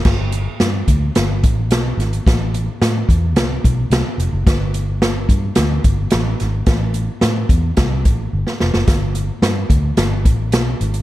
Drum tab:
CC |x---------------|----------------|----------------|----------------|
HH |--x-x-x-x-x-x-xx|x-x-x-x-x-x-x-x-|x-x-x-x-x-x-x-x-|x-x-x-x-x-x-----|
SD |o---o---o---o-o-|o---o---o---o---|o---o---o---o-o-|o---o---o----ooo|
BD |o-----o---o-----|o-----o---o-----|o-----o---o-----|o-----o-o-o-----|

CC |----------------|
HH |x-x-x-x-x-x-x-xx|
SD |o---o---o---o---|
BD |o-----o---o-----|